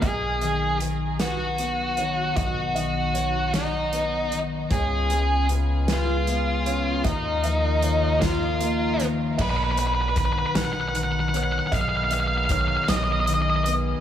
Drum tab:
CC |------|------|------|------|
HH |xxxxxx|xxxxxx|xxxxxx|xxxxxx|
SD |---o--|---o--|---o--|---o--|
BD |o-----|o-----|o-----|o--o--|

CC |x-----|------|
HH |-xxxxx|xxxxxx|
SD |---o--|---o--|
BD |o-o---|o-o---|